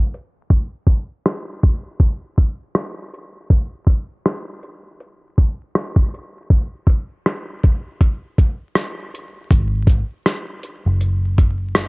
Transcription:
0.14 closed hi-hat medium
0.50 kick loud
0.50 closed hi-hat medium
0.87 kick medium
0.87 closed hi-hat medium
1.26 cross-stick loud
1.26 closed hi-hat medium
1.63 kick medium
1.63 closed hi-hat medium
2.00 kick medium
2.00 closed hi-hat medium
2.38 kick medium
2.38 closed hi-hat soft
2.75 cross-stick loud
2.75 closed hi-hat medium
3.14 closed hi-hat medium
3.50 kick loud
3.50 closed hi-hat medium
3.87 kick medium
3.87 closed hi-hat medium
4.26 cross-stick loud
4.26 closed hi-hat medium
4.63 closed hi-hat medium
5.00 closed hi-hat medium
5.38 kick medium
5.38 closed hi-hat soft
5.75 cross-stick medium
5.75 closed hi-hat medium
5.96 kick medium
6.14 closed hi-hat medium
6.50 kick loud
6.50 closed hi-hat medium
6.87 kick medium
6.87 closed hi-hat medium
7.26 cross-stick medium
7.26 closed hi-hat medium
7.63 kick medium
7.63 closed hi-hat medium
8.00 kick medium
8.00 closed hi-hat medium
8.38 kick medium
8.38 closed hi-hat soft
8.75 cross-stick loud
8.75 closed hi-hat medium
9.15 closed hi-hat medium
9.50 10.01 G#1 loud
9.50 kick loud
9.50 closed hi-hat loud
9.87 kick loud
9.87 closed hi-hat medium
10.26 cross-stick loud
10.26 closed hi-hat medium
10.63 closed hi-hat medium
10.86 11.88 F#1 medium
11.01 closed hi-hat medium
11.38 kick medium
11.38 closed hi-hat medium
11.75 cross-stick loud
11.75 closed hi-hat medium

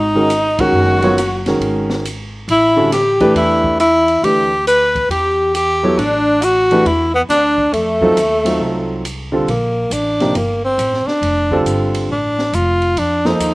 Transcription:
0.00 0.69 G#1 medium
0.00 0.61 D#4 medium
0.00 0.62 D#4 loud
0.15 0.29 D#3 medium
0.15 0.29 G#3 medium
0.15 0.29 C#4 medium
0.15 0.29 F#4 medium
0.15 0.29 A#4 medium
0.30 hi-hat pedal soft
0.30 ride medium
0.59 1.15 D#3 medium
0.59 1.15 G#3 medium
0.59 1.15 C#4 medium
0.59 1.46 F#4 medium
0.59 1.15 F#4 medium
0.59 1.47 F#4 medium
0.59 1.03 A#4 medium
0.59 kick medium
0.59 ride medium
0.72 1.56 F#1 medium
1.02 1.16 F#3 medium
1.02 1.16 B3 medium
1.02 1.17 F4 medium
1.02 1.17 A#4 medium
1.02 1.17 C#5 medium
1.02 ride soft
1.18 hi-hat pedal medium
1.18 ride medium
1.46 2.02 D#3 medium
1.46 2.02 G#3 medium
1.46 2.02 C#4 medium
1.46 2.03 F#4 medium
1.46 2.03 A#4 medium
1.46 snare soft
1.46 ride soft
1.60 2.44 G#1 medium
1.60 ride soft
1.90 snare soft
2.05 hi-hat pedal medium
2.05 ride medium
2.48 3.31 A1 medium
2.48 2.90 E4 medium
2.48 2.91 E4 loud
2.48 ride medium
2.76 2.90 D3 medium
2.76 2.91 G3 medium
2.76 2.91 C#4 medium
2.76 2.91 F#4 medium
2.76 2.91 A4 medium
2.92 3.33 G4 medium
2.92 snare soft
2.92 hi-hat pedal medium
2.92 ride medium
3.20 3.76 E3 medium
3.20 3.77 A3 medium
3.20 3.77 D4 medium
3.20 3.77 G4 medium
3.20 3.77 B4 medium
3.20 kick medium
3.20 ride soft
3.35 4.19 E2 medium
3.35 3.77 E4 medium
3.35 ride medium
3.64 kick medium
3.80 4.25 E4 medium
3.80 4.26 E4 loud
3.80 hi-hat pedal soft
3.80 ride medium
4.08 ride soft
4.22 5.06 D2 medium
4.22 4.49 E3 soft
4.22 4.49 A3 soft
4.22 4.50 D4 soft
4.22 4.67 G4 medium
4.22 4.67 G4 loud
4.22 4.50 G4 soft
4.22 4.50 B4 medium
4.22 ride medium
4.67 5.08 B4 medium
4.67 5.08 B4 loud
4.67 hi-hat pedal medium
4.67 ride medium
4.95 kick medium
4.95 ride soft
5.09 5.93 E2 medium
5.09 5.51 G4 medium
5.09 5.52 G4 medium
5.09 ride medium
5.54 6.00 G4 medium
5.54 6.00 G4 loud
5.54 hi-hat pedal medium
5.54 ride medium
5.83 5.97 F#3 medium
5.83 5.97 B3 medium
5.83 5.97 E4 medium
5.83 5.97 A4 medium
5.83 5.97 C#5 medium
5.97 6.81 A1 medium
5.97 6.43 D4 medium
5.97 6.46 D4 medium
5.97 ride medium
6.41 6.88 F#4 medium
6.41 hi-hat pedal medium
6.41 ride medium
6.71 6.85 E3 medium
6.71 6.85 A3 medium
6.71 6.85 D4 medium
6.71 6.85 G4 medium
6.71 6.85 B4 medium
6.71 ride soft
6.85 7.26 E2 medium
6.85 7.13 E4 medium
6.85 7.14 E4 medium
6.85 ride medium
7.14 7.21 B3 medium
7.14 7.22 B3 medium
7.29 7.70 D2 medium
7.29 7.76 D4 medium
7.29 7.75 D4 medium
7.29 snare soft
7.29 hi-hat pedal medium
7.29 ride medium
7.58 kick soft
7.73 8.13 F2 medium
7.73 9.04 A3 medium
7.73 9.05 A3 medium
7.73 ride medium
8.01 8.15 F#3 medium
8.01 8.15 C4 medium
8.01 8.15 D#4 medium
8.01 8.16 F4 medium
8.01 8.16 A4 medium
8.01 kick soft
8.16 8.57 D#2 medium
8.16 hi-hat pedal medium
8.16 ride medium
8.45 9.01 F#3 medium
8.45 9.01 C4 medium
8.45 9.01 D#4 medium
8.45 9.01 F4 medium
8.45 9.01 A4 medium
8.45 ride medium
8.59 9.43 C2 medium
9.05 hi-hat pedal medium
9.05 ride medium
9.32 9.46 D3 medium
9.32 9.46 G3 medium
9.32 9.46 C4 medium
9.32 9.46 F4 medium
9.32 9.47 A4 medium
9.47 9.90 A#1 medium
9.47 9.94 A#3 medium
9.47 ride medium
9.90 10.33 A1 medium
9.90 10.38 D4 medium
9.90 hi-hat pedal medium
9.90 ride medium
10.20 10.34 C3 medium
10.20 10.34 F3 medium
10.20 10.34 A#3 medium
10.20 10.34 D#4 medium
10.20 10.34 G4 medium
10.20 snare soft
10.20 ride soft
10.34 10.77 G1 medium
10.34 10.64 A#3 medium
10.34 ride medium
10.65 11.09 C4 medium
10.78 11.05 A1 medium
10.78 hi-hat pedal soft
10.78 ride medium
10.94 snare soft
11.06 11.66 D4 medium
11.06 muted upright bass stroke soft
11.06 snare soft
11.21 11.64 F1 medium
11.21 ride medium
11.51 12.07 D3 medium
11.51 12.07 G3 medium
11.51 12.07 C4 medium
11.51 12.08 F4 medium
11.51 12.08 A4 medium
11.51 kick soft
11.65 12.08 G1 medium
11.65 hi-hat pedal medium
11.65 ride medium
11.95 ride medium
12.09 12.52 A1 medium
12.09 12.56 D4 medium
12.39 snare soft
12.53 12.95 F1 medium
12.53 13.00 F4 loud
12.53 hi-hat pedal medium
12.53 ride medium
12.82 ride soft
12.96 13.39 F2 medium
12.96 13.28 D4 medium
12.96 ride medium
13.25 13.54 F3 medium
13.25 13.54 A#3 medium
13.25 13.54 D#4 medium
13.25 13.54 A4 medium
13.25 13.54 C5 medium
13.25 snare medium
13.40 13.54 D#2 medium
13.40 hi-hat pedal medium
13.40 ride medium

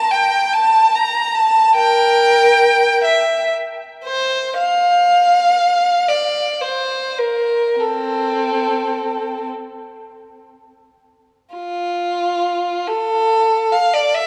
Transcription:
0.00 0.11 A5 medium
0.11 0.54 G5 medium
0.53 0.95 A5 medium
0.95 1.36 A#5 medium
1.35 1.78 A5 medium
1.76 3.00 A#4 medium
1.76 3.01 G5 medium
3.04 3.51 E5 medium
4.05 4.55 C5 medium
4.58 6.05 F5 medium
6.08 6.61 D5 medium
6.61 7.18 C5 soft
7.18 7.80 A#4 soft
7.80 9.47 C4 soft
7.80 9.51 A4 soft
11.55 12.85 F4 soft
12.87 13.71 A4 medium
13.72 13.93 F5 medium
13.93 14.14 D5 medium
14.14 14.27 E5 medium

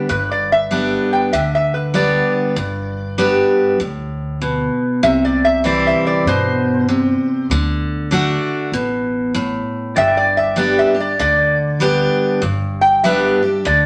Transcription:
0.09 0.97 G1 medium
0.09 1.28 G2 medium
0.09 0.30 B4 medium
0.31 0.51 D5 medium
0.52 1.11 E5 medium
0.71 1.30 G3 medium
0.71 1.31 B3 medium
0.71 1.31 D4 medium
0.71 1.31 G4 medium
1.13 1.33 G5 medium
1.33 2.20 D2 medium
1.33 2.52 D3 medium
1.33 1.53 E5 medium
1.55 1.74 E5 medium
1.74 1.94 B4 medium
1.94 2.54 G3 medium
1.94 2.54 B3 medium
1.94 2.54 D4 medium
1.94 2.54 G4 medium
1.94 3.15 D5 medium
2.56 3.43 G1 medium
2.56 3.75 G2 medium
3.18 3.77 G3 medium
3.18 3.77 B3 medium
3.18 3.78 D4 medium
3.18 3.78 G4 medium
3.80 4.67 D2 medium
3.80 4.39 A2 medium
4.42 5.01 B2 medium
5.03 5.90 C2 medium
5.03 6.22 C3 medium
5.03 5.23 E5 medium
5.25 5.44 D5 medium
5.45 5.64 E5 medium
5.64 6.24 E3 medium
5.64 6.24 G3 medium
5.64 6.24 C4 medium
5.64 6.25 E4 medium
5.64 5.85 D5 medium
5.87 6.06 E5 medium
6.07 6.26 D5 medium
6.26 7.13 G2 medium
6.26 6.86 B2 medium
6.26 7.46 C5 loud
6.89 7.48 C3 medium
7.50 8.36 D2 medium
7.50 8.10 D3 medium
8.11 8.70 D3 medium
8.11 8.71 A3 medium
8.11 8.71 D4 medium
8.11 8.71 F#4 medium
8.72 9.59 A1 medium
8.72 9.32 B2 medium
9.34 9.94 A2 medium
9.96 10.83 G1 medium
9.96 11.15 G2 medium
9.96 13.86 D5 medium
9.96 10.17 E5 loud
9.96 13.86 G5 medium
10.17 10.37 D5 medium
10.37 10.57 E5 medium
10.56 10.94 G3 medium
10.56 10.94 B3 medium
10.56 10.94 D4 medium
10.56 10.93 G4 medium
10.56 10.78 D5 medium
10.79 10.98 E5 medium
10.94 11.18 D4 soft
10.94 11.18 G4 medium
11.00 11.19 D5 medium
11.19 12.07 D2 medium
11.19 12.38 D3 medium
11.19 12.39 D5 loud
11.80 12.40 G3 medium
11.80 12.40 B3 medium
11.80 12.40 D4 medium
11.80 12.41 G4 loud
12.42 13.29 G1 medium
12.42 13.61 G2 medium
12.81 13.04 G5 loud
13.04 13.41 G3 medium
13.04 13.41 B3 medium
13.04 13.42 D4 medium
13.04 13.41 G4 medium
13.04 13.64 E5 medium
13.43 13.66 D4 soft
13.43 13.65 G4 medium
13.65 13.86 D2 medium
13.65 13.86 D3 medium
13.65 13.86 D5 medium

